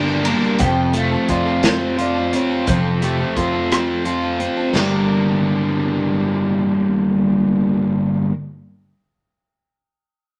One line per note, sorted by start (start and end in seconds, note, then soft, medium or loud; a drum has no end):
0.00 0.32 G1 loud
0.00 0.24 G3 medium
0.00 0.25 A#3 medium
0.00 0.26 D4 medium
0.00 0.26 A#4 medium
0.00 0.22 G5 medium
0.08 shaker soft
0.25 0.59 G3 medium
0.25 0.59 A#3 medium
0.25 0.60 D4 medium
0.25 0.60 A#4 medium
0.25 ride medium
0.25 shaker soft
0.29 0.60 G3 medium
0.43 shaker soft
0.59 1.15 F1 medium
0.59 2.33 F2 medium
0.59 0.92 F3 medium
0.59 0.94 C4 medium
0.59 0.95 F4 medium
0.59 0.95 A4 medium
0.59 0.63 F#5 medium
0.59 kick loud
0.59 closed hi-hat medium
0.64 0.96 G5 medium
0.93 1.11 F3 medium
0.93 2.67 A3 medium
0.93 1.12 C4 medium
0.93 1.11 F4 medium
0.93 1.10 A4 medium
0.93 closed hi-hat medium
0.98 1.30 F5 medium
1.11 1.47 C4 soft
1.11 1.47 F4 medium
1.11 1.45 A4 medium
1.28 2.38 F2 medium
1.28 1.97 F4 medium
1.28 1.64 D5 medium
1.28 kick medium
1.28 closed hi-hat medium
1.46 1.63 C4 soft
1.46 1.64 F4 soft
1.46 1.63 A4 medium
1.63 1.96 F3 medium
1.63 1.97 C4 medium
1.63 1.98 F4 medium
1.63 1.99 A4 medium
1.63 1.99 C5 medium
1.63 snare loud
1.63 closed hi-hat medium
1.97 2.15 F3 medium
1.97 2.16 C4 medium
1.97 2.15 F4 medium
1.97 2.13 A4 medium
1.97 closed hi-hat medium
2.01 2.33 D5 medium
2.14 2.51 C4 soft
2.14 2.49 F4 medium
2.14 2.48 A4 medium
2.33 3.70 C4 medium
2.33 2.67 C#5 medium
2.33 closed hi-hat medium
2.49 2.65 C4 soft
2.49 2.66 F4 medium
2.49 2.67 A4 medium
2.66 3.22 F1 medium
2.66 4.40 F2 medium
2.66 3.00 F3 medium
2.66 3.01 C4 medium
2.66 3.01 F4 medium
2.66 3.02 A4 medium
2.66 3.01 C5 medium
2.66 kick loud
2.66 closed hi-hat medium
3.01 3.19 F3 soft
3.01 4.75 A3 medium
3.01 3.19 C4 medium
3.01 3.19 F4 medium
3.01 3.36 G4 medium
3.01 3.17 A4 medium
3.01 closed hi-hat medium
3.18 3.53 C4 soft
3.18 3.52 F4 soft
3.18 3.51 A4 medium
3.36 4.46 F2 medium
3.36 4.04 F4 medium
3.36 4.05 A4 medium
3.36 kick medium
3.36 closed hi-hat medium
3.52 3.69 C4 soft
3.52 3.70 F4 soft
3.52 3.70 A4 soft
3.70 4.02 F3 medium
3.70 4.03 C4 medium
3.70 4.04 F4 medium
3.70 4.06 A4 medium
3.70 cross-stick loud
3.70 closed hi-hat medium
4.04 4.22 F3 medium
4.04 4.22 C4 medium
4.04 4.22 F4 medium
4.04 4.21 A4 medium
4.04 closed hi-hat medium
4.22 4.57 C4 soft
4.22 4.56 F4 soft
4.22 4.55 A4 soft
4.40 4.75 C4 medium
4.40 closed hi-hat medium
4.56 4.76 C4 soft
4.56 4.75 F4 soft
4.56 4.74 A4 medium
4.68 8.24 G2 medium
4.74 8.25 G1 medium
4.74 8.29 G2 medium
4.74 8.29 D3 medium
4.74 8.33 G3 medium
4.74 8.31 A#3 medium
4.74 8.28 D4 medium
4.74 8.32 D4 loud
4.74 8.28 G4 medium
4.74 8.33 A#4 medium
4.74 snare medium
4.74 splash medium
4.82 8.37 A#3 medium
4.82 8.41 D4 medium
4.89 8.45 A#4 medium